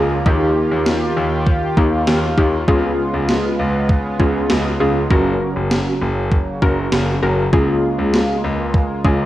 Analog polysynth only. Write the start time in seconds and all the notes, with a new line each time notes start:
Already playing: C#4 F4 G#4
0.26 A#3 D#4 G4
1.77 A#3 D#4 G4
2.38 A#3 D#4 G4
2.68 C#4 F4 G#4
4.20 C#4 F4 G#4
4.80 C#4 F4 G#4
5.11 C#4 F#4 A#4
6.62 C#4 F#4 A#4
7.23 C#4 F#4 A#4
7.53 C#4 F4 G#4
9.05 C#4 F4 G#4